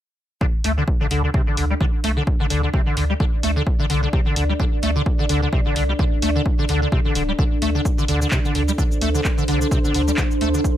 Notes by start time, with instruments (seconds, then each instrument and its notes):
0.41 acid bass D3, ambient pad D4, kick
0.47 ambient pad A4
0.64 sub bass D2, acid bass A3, open hi-hat
0.77 acid bass D3
0.88 kick
1.01 acid bass D3
1.11 sub bass D2, acid bass D3, open hi-hat
1.24 acid bass D3, ambient pad D5
1.34 acid bass C3, kick
1.47 acid bass D3
1.57 sub bass D2, acid bass D3, open hi-hat
1.70 acid bass G3
1.81 acid bass D3, kick
2.04 sub bass C2, acid bass A3, open hi-hat
2.17 acid bass D3
2.27 kick
2.40 acid bass D3
2.50 sub bass D2, acid bass D3, open hi-hat
2.63 acid bass D3
2.74 acid bass C3, kick
2.86 acid bass D3
2.97 sub bass D2, acid bass D3, open hi-hat
3.10 acid bass G3
3.20 acid bass D3, kick
3.43 sub bass D2, acid bass A3, open hi-hat
3.56 acid bass D3
3.67 kick
3.79 acid bass D3
3.90 sub bass C2, acid bass D3, open hi-hat
4.03 acid bass D3
4.13 acid bass C3, kick
4.26 acid bass D3
4.36 sub bass D2, acid bass D3, open hi-hat
4.49 acid bass G3
4.59 acid bass D3, kick
4.83 sub bass D2, acid bass A3, open hi-hat
4.96 acid bass D3
5.06 kick
5.19 acid bass D3
5.29 sub bass D2, acid bass D3, open hi-hat
5.42 acid bass D3
5.53 acid bass C3, kick
5.66 acid bass D3
5.76 sub bass C2, acid bass D3, open hi-hat
5.89 acid bass G3
5.99 acid bass D3, kick
6.22 sub bass D2, acid bass A3, open hi-hat
6.36 acid bass D3
6.46 kick
6.59 acid bass D3
6.69 sub bass D2, acid bass D3, open hi-hat
6.82 acid bass D3
6.92 acid bass C3, kick
7.05 acid bass D3
7.15 sub bass D1, acid bass D3, open hi-hat
7.28 acid bass G3
7.39 acid bass D3, kick
7.62 sub bass D2, acid bass A3, open hi-hat
7.75 acid bass D3
7.85 kick, shaker
7.98 acid bass D3, shaker
8.08 sub bass D2, acid bass D3, open hi-hat
8.21 acid bass D3, shaker
8.31 acid bass C3, kick, clap, shaker
8.45 acid bass D3, shaker
8.55 sub bass D2, acid bass D3, open hi-hat
8.68 acid bass G3, ambient pad C5, shaker
8.78 acid bass D3, kick, shaker
8.92 shaker
9.01 sub bass D2, acid bass A3, open hi-hat
9.15 acid bass D3, shaker
9.24 kick, clap, shaker
9.38 acid bass D3, shaker
9.48 sub bass C2, acid bass D3, open hi-hat
9.61 acid bass D3, shaker
9.71 acid bass C3, kick, shaker
9.84 acid bass D3, shaker
9.94 sub bass D2, acid bass D3, open hi-hat
10.08 acid bass G3, shaker
10.17 acid bass D3, kick, clap, shaker
10.31 shaker
10.41 sub bass D2, acid bass A3, open hi-hat
10.54 acid bass D3, shaker
10.64 kick, shaker